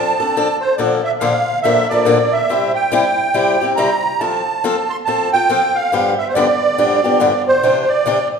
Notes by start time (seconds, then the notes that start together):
Already playing: F3 C4 D4 A4 A5
0.20 C4 D4 A4
0.37 F3 C4 D4 A4
0.61 C5
0.77 A#2 D3 F3 A#3 D4 A4 D5
1.04 E5
1.20 A#2 D3 F3 A#3 D4 A4 F5
1.62 A#2 D3 F3 A#3 D4 A4 E5
1.89 A#3 D4 A4 D5
1.93 F3
2.05 A#2 D3 F3 A#3 D4 A4
2.32 E5
2.49 C3 G3 C4 E4 G4
2.75 G5
2.92 C3 G3 C4 E4 G4
3.34 C3 G3 C4 E4 G4
3.61 C4 E4 G4
3.76 C3 G3 C4 E4 G4 A#5
4.20 F3 C4 F4 A4 A5
4.64 F3 C4 F4 A4
4.90 C6
5.05 F3 C4 F4 A4 A5
5.33 C4 F4 A4 G5
5.49 F3 C4 F4 A4
5.75 F5
5.92 G2 D3 F3 B3 D4 G4
6.18 E5
6.29 C5
6.34 G2 D3 F3 B3 D4 G4 D5
6.78 G2 D3 F3 B3 D4 G4
7.04 F3 B3 D4 G4
7.20 G2 D3 F3 B3 D4 G4
7.48 C5
7.63 C3 E3 D4 G4
7.81 C5
7.88 D5
8.06 C3 E3 D4 G4